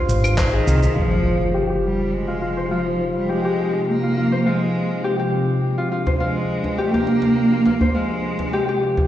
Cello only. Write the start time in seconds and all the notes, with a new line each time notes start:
0.31 F3
0.38 D#3
0.96 F3
1.84 G3
2.13 G#3
2.71 F3
3.16 G3
3.30 G#3
3.88 A#3
4.46 G#3
6.21 G#3
6.78 A#3
7.95 G#3